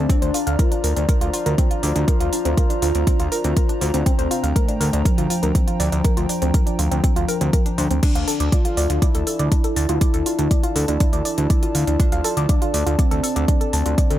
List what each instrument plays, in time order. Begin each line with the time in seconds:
Already playing: soft synth lead C4, analog synth pad D4 D5
0.09 synth pluck C4 C5, soft synth lead D4, analog synth pad C5 A#5, kick, closed hi-hat
0.22 analog synth bass D2, synth pluck C5 C6, closed hi-hat
0.34 synth pluck F4 F5, open hi-hat
0.47 analog synth bass D2, synth pluck F5 F6, closed hi-hat
0.59 soft synth lead F4, synth pluck A#4 A#5, kick, closed hi-hat
0.72 synth pluck D4 D5, closed hi-hat
0.84 analog synth bass D2, synth pluck A#4 A#5, open hi-hat
0.96 analog synth bass D2, synth pluck D4 D5, closed hi-hat
1.09 soft synth lead F4, synth pluck A#4 A#5, kick, closed hi-hat
1.21 analog synth bass D2, synth pluck F4 F5, closed hi-hat
1.34 synth pluck F4 F5, open hi-hat
1.46 analog synth bass D2, synth pluck A#4 A#5, closed hi-hat
1.58 synth pluck C4 C5, kick, closed hi-hat
1.71 synth pluck F4 F5, closed hi-hat
1.83 analog synth bass D2, synth pluck D5 D6, open hi-hat
1.96 analog synth bass D2, synth pluck D4 D5, closed hi-hat
2.08 synth pluck A#4 A#5, kick, closed hi-hat
2.20 analog synth bass D2, synth pluck F4 F5, closed hi-hat
2.33 synth pluck D4 D5, open hi-hat
2.45 analog synth bass D2, synth pluck C4 C5, closed hi-hat
2.57 synth pluck A#4 A#5, kick, closed hi-hat
2.70 synth pluck D4 D5, closed hi-hat
2.82 analog synth bass D2, synth pluck F4 F5, open hi-hat
2.95 analog synth bass D2, synth pluck C4 C5, closed hi-hat
3.07 synth pluck C4 C5, kick, closed hi-hat
3.20 analog synth bass D2, synth pluck F4 F5, closed hi-hat
3.32 synth pluck A#4 A#5, open hi-hat
3.44 analog synth bass D2, synth pluck C4 C5, closed hi-hat
3.57 synth pluck A#4 A#5, kick, closed hi-hat
3.69 synth pluck D4 D5, closed hi-hat
3.81 analog synth bass D2, synth pluck C5 C6, open hi-hat
3.94 analog synth bass D2, synth pluck C4 C5, closed hi-hat
4.06 synth pluck C4 C5, soft synth lead C4, analog synth pad G5, kick, closed hi-hat
4.19 analog synth bass D2, synth pluck C5 C6, closed hi-hat
4.31 synth pluck F4 F5, open hi-hat
4.43 analog synth bass D2, synth pluck F5 F6, closed hi-hat
4.56 soft synth lead A3, synth pluck A#4 A#5, kick, closed hi-hat
4.68 synth pluck D4 D5, closed hi-hat
4.80 analog synth bass D2, synth pluck A#4 A#5, open hi-hat
4.93 analog synth bass D2, synth pluck D4 D5, closed hi-hat
5.05 soft synth lead F3, synth pluck A#4 A#5, kick, closed hi-hat
5.18 analog synth bass D2, synth pluck F4 F5, closed hi-hat
5.30 synth pluck F4 F5, open hi-hat
5.43 analog synth bass D2, synth pluck A#4 A#5, closed hi-hat
5.55 synth pluck C4 C5, kick, closed hi-hat
5.67 synth pluck F4 F5, closed hi-hat
5.80 analog synth bass D2, synth pluck D5 D6, open hi-hat
5.92 analog synth bass D2, synth pluck D4 D5, closed hi-hat
6.04 synth pluck A#4 A#5, kick, closed hi-hat
6.17 analog synth bass D2, synth pluck F4 F5, closed hi-hat
6.29 synth pluck D4 D5, open hi-hat
6.42 analog synth bass D2, synth pluck C4 C5, closed hi-hat
6.54 synth pluck A#4 A#5, kick, closed hi-hat
6.67 synth pluck D4 D5, closed hi-hat
6.79 analog synth bass D2, synth pluck F4 F5, open hi-hat
6.91 analog synth bass D2, synth pluck C4 C5, closed hi-hat
7.04 synth pluck C4 C5, kick, closed hi-hat
7.16 analog synth bass D2, synth pluck F4 F5, closed hi-hat
7.29 synth pluck A#4 A#5, open hi-hat
7.41 analog synth bass D2, synth pluck C4 C5, closed hi-hat
7.53 synth pluck A#4 A#5, kick, closed hi-hat
7.66 synth pluck D4 D5, closed hi-hat
7.78 analog synth bass D2, synth pluck C5 C6, open hi-hat
7.91 analog synth bass D2, synth pluck C4 C5, closed hi-hat
8.03 soft synth lead D4, analog synth pad D4 A4 D5 A5, synth pluck D4 D5, kick, closed hi-hat, crash
8.15 analog synth bass D2, synth pluck F5 F6, closed hi-hat
8.28 synth pluck A4 A5, open hi-hat
8.40 analog synth bass D2, synth pluck D6, closed hi-hat
8.52 soft synth lead F4, synth pluck D5 D6, kick, closed hi-hat
8.65 synth pluck F4 F5, closed hi-hat
8.77 analog synth bass D2, synth pluck D5 D6, open hi-hat
8.90 analog synth bass D2, synth pluck F4 F5, closed hi-hat
9.02 soft synth lead E4, synth pluck D5 D6, kick, closed hi-hat
9.15 analog synth bass D2, synth pluck A4 A5, closed hi-hat
9.27 synth pluck A4 A5, open hi-hat
9.39 analog synth bass D2, synth pluck D5 D6, closed hi-hat
9.52 synth pluck D4 D5, kick, closed hi-hat
9.64 synth pluck A4 A5, closed hi-hat
9.76 analog synth bass D2, synth pluck A5 A6, open hi-hat
9.89 analog synth bass D2, synth pluck F4 F5, closed hi-hat
10.01 synth pluck D5 D6, kick, closed hi-hat
10.14 analog synth bass D2, synth pluck A4 A5, closed hi-hat
10.26 synth pluck F4 F5, open hi-hat
10.39 analog synth bass D2, synth pluck D4 D5, closed hi-hat
10.51 synth pluck D5 D6, kick, closed hi-hat
10.63 synth pluck F4 F5, closed hi-hat
10.76 analog synth bass D2, synth pluck A4 A5, open hi-hat
10.88 analog synth bass D2, synth pluck D4 D5, closed hi-hat
11.00 synth pluck D4 D5, kick, closed hi-hat
11.13 analog synth bass D2, synth pluck D5 D6, closed hi-hat
11.25 synth pluck D5 D6, open hi-hat
11.38 analog synth bass D2, synth pluck D4 D5, closed hi-hat
11.50 synth pluck D5 D6, kick, closed hi-hat
11.63 synth pluck F4 F5, closed hi-hat
11.75 analog synth bass D2, synth pluck F5 F6, open hi-hat
11.87 analog synth bass D2, synth pluck D4 D5, closed hi-hat
12.00 synth pluck D4 D5, soft synth lead F4, kick, closed hi-hat
12.12 analog synth bass D2, synth pluck F5 F6, closed hi-hat
12.24 synth pluck A4 A5, open hi-hat
12.37 analog synth bass D2, synth pluck D6, closed hi-hat
12.49 soft synth lead D4, synth pluck D5 D6, kick, closed hi-hat
12.62 synth pluck F4 F5, closed hi-hat
12.74 analog synth bass D2, synth pluck D5 D6, open hi-hat
12.86 analog synth bass D2, synth pluck F4 F5, closed hi-hat
12.99 soft synth lead C4, synth pluck D5 D6, kick, closed hi-hat
13.11 analog synth bass D2, synth pluck A4 A5, closed hi-hat
13.23 synth pluck A4 A5, open hi-hat
13.36 analog synth bass D2, synth pluck D5 D6, closed hi-hat
13.48 synth pluck D4 D5, kick, closed hi-hat
13.61 synth pluck A4 A5, closed hi-hat
13.73 analog synth bass D2, synth pluck A5 A6, open hi-hat
13.86 analog synth bass D2, synth pluck F4 F5, closed hi-hat
13.98 synth pluck D5 D6, kick, closed hi-hat
14.11 analog synth bass D2, synth pluck A4 A5, closed hi-hat